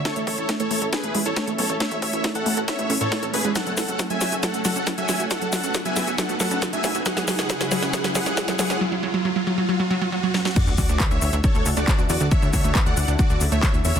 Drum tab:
CC |----------------|----------------|----------------|----------------|
HH |xxoxxxoxxxoxxxox|xxoxxxoxxxoxxxox|xxoxxxoxxxoxxxox|xxoxxxoxxxoxxxox|
SH |----------------|----------------|xxxxxxxxxxxxxxxx|xxxxxxxxxxxxxxxx|
CP |----------------|----------------|----------------|----------------|
SD |o---o---o---o---|o---o---o---o---|o-o-o-o-o-o-o-o-|o-o-o-o-o-o-o-o-|
BD |o-o-o---o---o---|o-o-o---o---o---|o-o-o---o---o---|o-o-o---o---o---|

CC |----------------|----------------|x---------------|----------------|
HH |xxoxxxoxxxoxxxox|----------------|xxoxxxoxxxoxxxox|xxoxxxoxxxoxxxox|
SH |xxxxxxxxxxxxxxxx|----------------|xxxxxxxxxxxxxxxx|xxxxxxxxxxxxxxxx|
CP |----------------|----------------|----x-------x---|----x-------x---|
SD |oooooooooooooooo|--------------oo|----------------|----------------|
BD |o-o-o---o---o---|----------------|o-o-o---o---o---|o-o-o---o---o---|